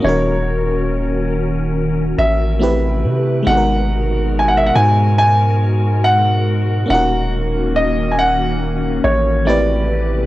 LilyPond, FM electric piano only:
\new Staff \with { instrumentName = "FM electric piano" } { \time 4/4 \key gis \minor \tempo 4 = 70 <dis ais cis' fis' ais'>2. <a c' e' g' b'>4 | <gis b dis' fis' a' ais'>1 | <ais cis' dis' eis' fis' ais'>2. <a c' e' g' b'>4 | }